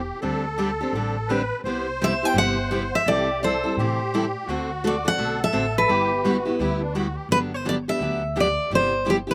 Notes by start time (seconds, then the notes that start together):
Already playing: G4
0.21 D2 D3 G3 C4 D4 G4 A4
0.58 D3 G3 C4 D4 G4
0.81 C4 D4 G4
0.93 A1 D3 G3 C4 D4 G4
1.27 D3 G3 C4 D4 G4 B4
1.64 C2 C3 G3 B3 E4 G4 C5
2.01 C3 G3 B3 E4 G4 E5
2.23 B3 E4 G4 G5
2.34 G1 C3 G3 B3 E4 G4
2.38 F#5
2.71 C3 G3 B3 E4 G4
2.95 E5
3.06 C2 C3 E3 G3 C4 E4 G4 A4 D5
3.43 C3 E3 G3 C4 E4 A4 C5
3.64 G3 C4 E4 A4
3.77 A2 C3 E3 G3 C4 E4 G4 A4
4.14 C3 E3 G3 C4 E4 A4
4.46 D2 D3 A3 C4 F#4
4.51 A4
4.84 D3 A3 C4 F#4 A4 D5
5.05 C4 F#4 A4 F#5
5.18 B1 D3 A3 C4 F#4 A4
5.44 E5
5.53 A1 D3 A3 C4 F#4 A4
5.78 B4
5.89 G1 G3 B3 E4 G4
6.22 G3 B3 E4 F#4
6.26 G4
6.45 B3 E4 G4
6.59 D2 G3 B3 E4 G4
6.80 D4
6.93 G3 B3 E4 F#4 G4
7.15 G4
7.29 G1 D3 F#3 B3 D4 G4 B4
7.54 C5
7.65 D3 F#3 B3 D4 G4 D5
7.88 B3 D4 G4 E5
7.99 D2 D3 F#3 B3 D4 G4
8.36 D3 F#3 B3 D4 G4
8.40 D5
8.70 G1 C3 G3 B3 E4 G4
8.75 C5
9.05 C3 G3 B3 E4 G4
9.10 G4
9.27 B3 E4 G4 B4